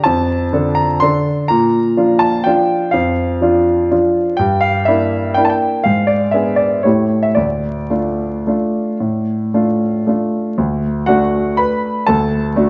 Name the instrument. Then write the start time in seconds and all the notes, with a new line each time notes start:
grand piano
0.04 F2 A5
0.53 D3 D4 A4
0.75 A#5
1.00 D3 D4 A4 C6
1.48 A#2 A#5
1.97 F3 D4 F4
2.19 A5
2.44 F3 D4 F4 G5
2.91 F2 F5
3.41 F3 D4 F4
3.91 F3 D4 F4
4.37 G2 G5
4.61 F5
4.85 A#3 D4 E4 E5
5.34 A#3 D4 E4 G5
5.45 A5
5.50 G5
5.84 G#2 F5
6.07 D5
6.31 B3 D4 G#4 E5
6.56 D5
6.83 A2 A3 E4 G4 C#5
7.23 E5
7.35 D2 D5
7.90 A3 D4 F4
8.47 A3 D4 F4
9.00 A2
9.54 A3 D4 F4
10.07 A3 D4 F4
10.58 D2
11.06 A3 D4 F#4 F#5
11.57 B4 B5
12.07 D2 A4 A5
12.56 A3 D4 F#4